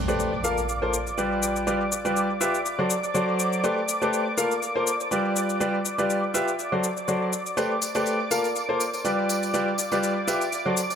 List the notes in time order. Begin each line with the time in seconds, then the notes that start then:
Already playing: D5 D6, impact
0.08 A3 G4 A4 B4 C5 D5, shaker
0.20 shaker
0.44 A#3 F4 A4 A#4 F5, shaker
0.58 shaker
0.69 shaker
0.82 A#3 F4 A4 A#4 C5
0.94 shaker
1.07 shaker
1.18 G3 F4 G4 B4 D5, shaker
1.43 shaker
1.56 shaker
1.67 G3 F4 G4 B4 D5, shaker
1.92 shaker
2.05 G3 F4 G4 B4 D5, shaker
2.16 shaker
2.41 F4 G4 B4 E5, shaker
2.54 shaker
2.66 shaker
2.79 F#3 F#4 A4 C5 D5
2.90 shaker
3.04 shaker
3.14 F#3 F#4 A4 C5 D5, shaker
3.39 shaker
3.53 shaker
3.64 A3 G4 A4 B4 C5 D5, shaker
3.89 shaker
4.02 A3 G4 A4 B4 C5 D5, shaker
4.13 shaker
4.37 A#3 F4 A4 A#4 F5, shaker
4.51 shaker
4.62 shaker
4.75 A#3 F4 A4 A#4 C5
4.87 shaker
5.00 shaker
5.11 G3 F4 G4 B4 D5, shaker
5.36 shaker
5.50 shaker
5.60 G3 F4 G4 B4 D5, shaker
5.85 shaker
5.98 G3 F4 G4 B4 D5, shaker
6.10 shaker
6.34 F4 G4 B4 E5, shaker
6.48 shaker
6.59 shaker
6.72 F#3 F#4 A4 C5 D5
6.84 shaker
6.97 shaker
7.08 F#3 F#4 A4 C5 D5, shaker
7.33 shaker
7.46 shaker
7.57 A3 G4 A4 B4 C5 D5 D6, tambourine, shaker
7.82 tambourine, shaker
7.95 A3 G4 A4 B4 C5 D5, tambourine, shaker
8.06 tambourine, shaker
8.31 A#3 F4 A4 A#4 F5, tambourine, shaker
8.44 tambourine, shaker
8.56 tambourine, shaker
8.69 A#3 F4 A4 A#4 C5
8.80 tambourine, shaker
8.94 tambourine, shaker
9.05 G3 F4 G4 B4 D5, tambourine, shaker
9.29 tambourine, shaker
9.43 tambourine, shaker
9.53 G3 F4 G4 B4 D5, tambourine, shaker
9.78 tambourine, shaker
9.91 G3 F4 G4 B4 D5, tambourine, shaker
10.03 tambourine, shaker
10.28 F4 G4 B4 E5, tambourine, shaker
10.41 tambourine, shaker
10.52 tambourine, shaker
10.66 F#3 F#4 A4 C5 D5
10.77 tambourine, shaker
10.90 tambourine, shaker